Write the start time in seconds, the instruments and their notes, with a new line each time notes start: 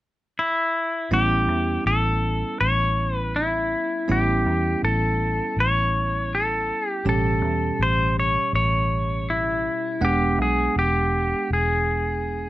0.39 electric slide guitar E4
1.11 fingered electric bass A1, tine electric piano G3 B3 C#4 E4, electric slide guitar G4
1.48 fingered electric bass E2
1.86 fingered electric bass A1, electric slide guitar A4
2.61 fingered electric bass A1, electric slide guitar C#5
3.17 electric slide guitar B4
3.36 electric slide guitar E4
4.08 fingered electric bass A1, tine electric piano G3 B3 C#4 E4, electric slide guitar G4
4.46 fingered electric bass E2
4.83 fingered electric bass A1, electric slide guitar A4
5.57 fingered electric bass A1, electric slide guitar C#5
6.35 electric slide guitar A4
6.90 electric slide guitar G4
7.05 fingered electric bass A1, tine electric piano B2 G3 C#4 G4, electric slide guitar A4
7.42 fingered electric bass E2
7.79 fingered electric bass A1, electric slide guitar C5
8.19 electric slide guitar C#5
8.53 fingered electric bass A1, electric slide guitar C#5
9.30 electric slide guitar E4
10.01 fingered electric bass E1, tine electric piano G#3 B3 D4 F#5, electric slide guitar G4
10.39 fingered electric bass B1, electric slide guitar G#4
10.76 fingered electric bass E1, electric slide guitar G4
11.50 fingered electric bass E1, electric slide guitar G#4